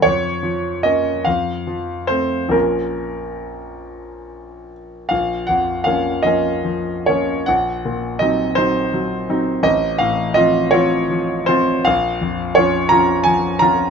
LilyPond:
<<
  \new Staff \with { instrumentName = "Grand piano" } { \time 12/8 \key bes \minor \tempo 4. = 53 des''4 ees''8 f''4 c''8 bes'2~ bes'8 r8 | f''8 ges''8 f''8 ees''4 des''8 ges''4 ees''8 c''4. | ees''8 f''8 ees''8 des''4 c''8 f''4 des''8 bes''8 aes''8 bes''8 | }
  \new Staff \with { instrumentName = "Grand piano" } { \clef bass \time 12/8 \key bes \minor f,8 f8 <bes des'>8 f,8 f8 <a c'>8 <bes,, f bes des'>2. | bes,,8 f,8 <f bes des'>8 <f bes des'>8 f8 <f bes des'>8 bes,,8 bes,8 <ges c' ees'>8 <ges c' ees'>8 ges8 <ges c' ees'>8 | a,,8 a,8 <f c' f'>8 <f c' f'>8 f8 <f c' f'>8 bes,,8 f,8 <f des' f'>8 <f des' f'>8 f8 <f des' f'>8 | }
>>